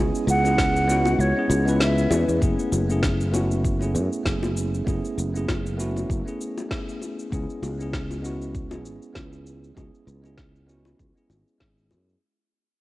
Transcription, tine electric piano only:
Already playing: G#3 B3 C#4
0.00 E4 G#4
0.43 G#3 B3 C#4 E4
0.47 G#4
0.87 G#3 B3 C#4 E4 F#4
1.35 G#3 B3 C#4 E4 G#4
1.65 G#3 B3 C#4 E4 B4
2.10 G#3 B3 C#4 E4 B4
2.40 A3 B3 C#4 E4 G#4
2.88 A3 B3 C#4 E4 G#4
3.32 A3 B3 C#4 E4 F#4
3.79 A3 B3 C#4 E4 G#4
4.23 A3 B3 C#4 E4
4.28 G#4
4.85 A3 B3 C#4 E4
4.89 G#4
5.34 A3 B3 C#4 E4 G#4
5.77 A3 B3 C#4 E4 F#4
6.25 A3 B3 C#4 E4 G#4
6.69 A3 B3 C#4 E4
6.73 G#4
7.31 G#3 B3 C#4 E4 G#4
7.78 G#3 B3 C#4 E4 G#4
8.22 G#3 B3 C#4 E4 F#4
8.69 G#3 B3 C#4 E4 G#4
9.13 G#3 B3 C#4 E4
9.17 G#4
9.75 G#3 B3 C#4 E4
9.79 G#4
10.22 G#3 B3 C#4 E4 G#4
10.66 G#3 B3 C#4 E4 F#4
11.14 G#3 B3 C#4 E4 G#4
11.58 G#3 B3 C#4 E4
11.62 G#4

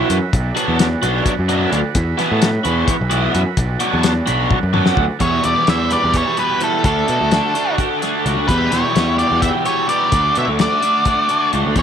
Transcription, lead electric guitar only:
5.21 C#5
5.45 D5
5.69 E5
5.93 D5
6.17 C#5
6.39 B4
6.64 A4
6.85 A4
8.48 B4
8.72 C#5
9.18 D5
9.42 E5
9.66 C#5
9.89 D5
10.39 E5
10.61 D5
11.79 C#5

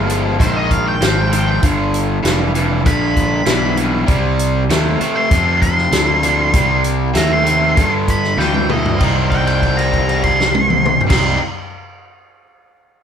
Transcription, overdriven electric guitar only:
0.07 G#2 F3
0.39 G#2 D#3
1.01 G#2 F3
1.32 G#2 F3
1.63 G2 D3
2.23 G2 E3
2.55 G2 E3
2.86 G2 D3
3.46 G2 E3
3.76 G2 E3
4.06 C3 G3
4.70 C3 A3
5.00 C3 A3
5.31 F2 C3
5.91 F2 D3
6.23 F2 D3
6.54 C3 G3
7.14 C3 A3
7.44 C3 A3
7.75 G2 D3
8.38 G2 E3
8.69 G2 E3
8.97 C3 G3 C4
9.01 D#4
11.07 C3 G3 C4
11.11 D#4

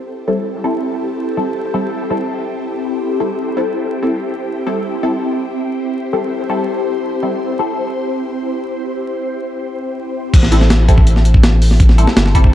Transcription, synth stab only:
0.27 G3 C4 E4 A4
0.64 G3 C4 E4 A4
1.37 G3 C4 E4 A4
1.74 G3 C4 E4 A4
2.10 G3 C4 E4 A4
3.20 G3 C4 E4 A4
3.57 G3 C4 E4 A4
4.03 G3 C4 E4 A4
4.67 G3 C4 E4 A4
5.03 G3 C4 E4 A4
6.13 G3 C4 E4 A4
6.50 G3 C4 E4 A4
7.23 G3 C4 E4 A4
7.59 G3 C4 E4 A4
10.52 G3 C4 E4 A4
10.88 G3 C4 E4 A4
11.98 G3 C4 E4 A4
12.35 G3 C4 E4 A4

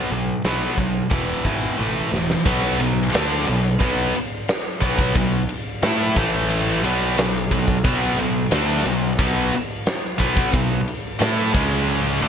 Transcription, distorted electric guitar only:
0.11 B2 F#3
0.45 B2 F#3 B3
0.77 B2 F#3
1.10 E2 B2 E3
1.44 E2 B2 E3
1.78 A2 E3 A3
2.11 A2 E3
2.45 B2 F#3 B3
2.79 B2 F#3
3.12 D3 A3 D4
3.46 B2 F#3
3.80 B2 F#3 B3
4.81 B2 F#3 B3
5.16 B2 F#3
5.83 A3 E4 A4
6.17 A2 E3 A3
6.84 B2 F#3 B3
7.18 B2 F#3
7.52 B2 F#3
7.84 B2 F#3 B3
8.19 B2 F#3
8.52 D3 A3 D4
8.85 B2 F#3
9.19 B2 F#3 B3
10.18 B2 F#3 B3
10.53 B2 F#3
11.19 A3 E4 A4
11.53 C#3 G#3 C#4
12.21 D3 A3 D4

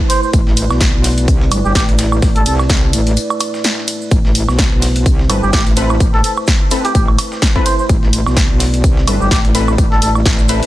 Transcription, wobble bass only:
0.34 A1
0.71 B1
0.94 B1
1.28 C2
1.52 G1
1.65 G1
1.75 A1
2.22 A1
2.46 C2
2.93 A1
4.11 A1
4.48 B1
4.72 B1
5.06 C2
5.29 G1
5.43 G1
5.53 A1
6.00 A1
6.95 A1
7.89 A1
8.27 B1
8.50 B1
8.84 C2
9.08 G1
9.21 G1
9.31 A1
9.78 A1
10.02 A1
10.26 A1

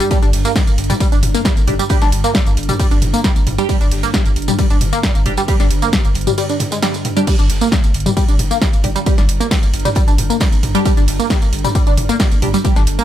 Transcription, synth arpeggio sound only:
0.00 G3
0.11 G3
0.22 D4
0.45 A#3
0.56 G3
0.90 G3
1.00 G3
1.12 D4
1.34 A#3
1.45 G3
1.79 G3
1.90 G3
2.02 D4
2.24 A#3
2.35 G3
2.69 G3
2.80 G3
2.91 D4
3.14 A#3
3.24 G3
3.58 G3
3.69 G3
3.81 D4
4.03 A#3
4.14 G3
4.48 G3
4.59 G3
4.70 D4
4.93 A#3
5.04 G3
5.38 G3
5.48 G3
5.60 D4
5.82 A#3
5.93 G3
6.27 G3
6.38 G3
6.50 D4
6.72 G#3
6.83 G3
7.17 G3
7.27 G3
7.39 D4
7.61 A#3
7.72 G3
8.06 G3
8.17 G3
8.28 D4
8.51 A#3
8.62 G3
8.96 G3
9.06 G3
9.18 D4
9.40 A#3
9.51 G3
9.85 G3
9.96 G3
10.08 D4
10.30 A#3
10.41 G3
10.75 G3
10.85 G3
10.97 D4
11.20 A#3
11.30 G3
11.64 G3
11.75 G3
11.87 D4
12.09 A#3
12.20 G3
12.54 G3
12.64 G3
12.76 D4
12.99 A#3

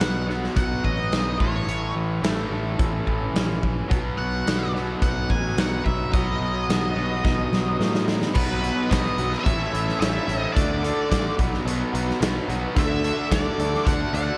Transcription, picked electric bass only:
0.00 B1
0.56 B1
0.84 A1
1.11 B1
1.40 A1
1.67 A1
1.95 A1
2.23 A1
2.51 A1
2.79 A1
3.07 A1
3.33 A#1
3.90 B1
4.18 B1
4.46 B1
5.02 B1
5.30 A1
5.56 B1
5.85 B1
6.13 B1
6.40 B1
6.68 B1
6.96 B1
7.24 B1
7.51 B1
7.80 A2
8.36 B1
8.92 B1
9.18 B1
9.46 A1
9.73 A1
10.01 A1
10.28 A1
10.56 D2
11.12 A1
11.39 B1
11.65 B1
11.94 B1
12.21 B1
12.48 B1
12.77 D2
13.31 D2
13.58 D2
13.86 D2
14.13 D2

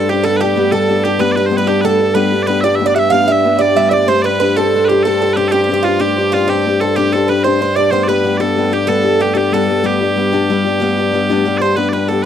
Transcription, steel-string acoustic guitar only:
0.09 D4 G4 C5
0.24 G3 B3 D4 G4
0.41 B3 D4 G4
0.56 G3 B3 D4 G4
0.72 G3 B3 D4 G4
0.88 G3 B3 D4 G4
1.03 B3 D4 G4
1.19 G3 B3 D4 G4
1.36 B3 D4 G4
1.50 G3 B3 D4 G4
1.67 G3 B3 D4 G4
1.83 G3 B3 D4 G4
1.99 B3 D4 G4
2.14 G3 B3 D4 G4
2.32 B3 D4 G4
2.47 G3 B3 D4 G4
2.64 G3 B3 D4 G4
2.79 G3 B3 D4 G4
2.95 B3 D4 G4
3.11 G3 B3 D4 G4
3.27 B3 D4 G4
3.44 G3 B3 D4 G4
3.59 G3 B3 D4 G4
3.76 G3 B3 D4 G4
3.92 B3 D4 G4
4.08 C4 D4 G4 C5
4.24 D4 G4 C5
4.41 C4 D4 G4 C5
4.57 C4 D4 G4 C5
4.73 C4 D4 G4 C5
4.90 D4 G4 C5
5.05 C4 D4 G4 C5
5.21 D4 G4 C5
5.36 C4 D4 G4 C5
5.51 C4 D4 G4 C5
5.69 C4 D4 G4 C5
5.85 D4 G4 C5
6.00 C4 D4 G4 C5
6.16 D4 G4 C5
6.33 C4 D4 G4 C5
6.47 C4 D4 G4 C5
6.66 C4 D4 G4 C5
6.81 D4 G4 C5
6.97 C4 D4 G4 C5
7.14 D4 G4 C5
7.29 C4 D4 G4 C5
7.45 C4 D4 G4 C5
7.61 C4 D4 G4 C5
7.75 D4 G4 C5
7.91 G3 B3 D4 G4
8.08 B3 D4 G4
8.24 G3 B3 D4 G4
8.40 G3 B3 D4 G4
8.56 G3 B3 D4 G4
8.72 B3 D4 G4
8.87 G3 B3 D4 G4
9.04 B3 D4 G4
9.20 G3 B3 D4 G4
9.35 G3 B3 D4 G4
9.52 G3 B3 D4 G4
9.67 B3 D4 G4
9.83 G3 B3 D4 G4
10.01 B3 D4 G4
10.16 G3 B3 D4 G4
10.32 G3 B3 D4 G4
10.50 G3 B3 D4 G4
10.65 B3 D4 G4
10.80 G3 B3 D4 G4
10.98 B3 D4 G4
11.12 G3 B3 D4 G4
11.29 G3 B3 D4 G4
11.45 G3 B3 D4 G4
11.60 B3 D4 G4
11.76 G3 B3 D4 G4
11.93 B3 D4 G4
12.09 G3 B3 D4 G4

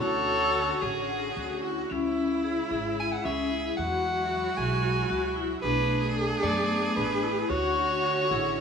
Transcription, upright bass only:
0.02 D2
0.82 A1
1.37 D2
1.91 C#2
2.71 G#1
3.25 C#2
3.78 E2
4.58 B1
5.10 C#2
5.63 B1
6.43 F#2
6.97 A1
7.50 D2
8.31 A1

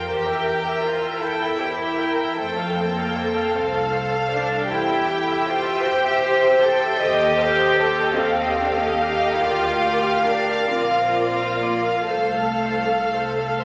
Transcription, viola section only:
Already playing: A#4
0.09 C5
0.28 E5
0.47 G5
0.66 E5
0.85 C5
1.04 E5
1.24 G5
1.43 E5
1.61 C5
1.81 E5
2.01 G5
2.20 E5
2.39 A4 C5
2.58 F5
2.78 C5
2.97 F5
3.16 C5
3.35 F5
3.55 C5
3.74 F5
3.93 C5
4.13 F5
4.32 C5
4.51 F5
4.71 C5
4.89 E5
5.09 G5
5.28 E5
5.47 C5
5.66 E5
5.85 G4 G5
6.04 E5
6.23 C5
6.42 E5
6.63 G5
6.82 E5
7.01 A4 C5
7.22 D#5
7.41 F5
7.61 D#5
7.80 C5
8.00 D#5
8.20 F5
8.40 D#5
8.58 C5
8.79 D#5
8.99 F5
9.20 D#5
9.41 A#4 D5
9.62 F5
9.83 D5
10.05 F5
10.26 D5
10.48 F5
10.70 D5
10.93 F5
11.14 D5
11.36 F5
11.59 D5
11.83 F5
12.08 A4 C5
12.34 F5
12.61 C5
12.87 F5
13.14 C5
13.40 F5

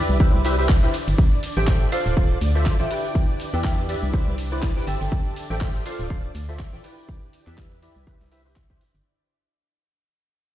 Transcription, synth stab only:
Already playing: E4 G4 B4 D5 E5
0.20 E4 G4 B4 C5 E5
0.45 E4 G4 B4 C5 E5
0.58 E4 G4 B4 C5 E5
0.83 E4 G4 B4 C5 E5
1.57 G4 A4 C5 E5 G5
1.92 F4 A4 C5 D5 F5
2.17 F4 A4 C5 D5 F5
2.55 F4 A4 C5 D5 E5
2.80 F4 A4 C5 D5 G5
2.91 E4 G4 B4 D5 G5
3.54 E4 G4 B4 D5 E5
3.89 E4 G4 B4 D5 E5
4.14 E4 G4 B4 C5 E5
4.52 E4 G4 B4 C5 D5
4.77 E4 G4 B4 C5 G5
4.87 G4 A4 C5 E5 A5
5.50 G4 A4 C5 E5 G5
5.86 F4 A4 C5 D5 F5
6.10 F4 A4 C5 D5 F5
6.49 F4 A4 C5 D5 E5
6.73 F4 A4 C5 D5 G5
6.84 E4 G4 B4 D5 G5
7.47 E4 G4 B4 D5 E5
7.82 E4 G4 B4 D5 E5
8.07 E4 G4 B4 C5 E5
8.32 E4 G4 B4 C5 E5
8.45 E4 G4 B4 C5 E5
8.70 E4 G4 B4 C5 E5

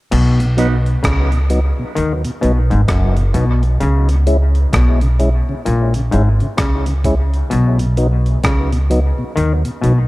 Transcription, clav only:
0.11 B2
1.03 C#3
1.95 D#3
2.41 B2
2.70 G#2
2.88 F#2
3.34 B2
3.80 C#3
4.73 B2
5.65 A#2
6.11 G#2
6.57 C#3
7.50 B2
8.44 C#3
9.36 D#3
9.81 B2

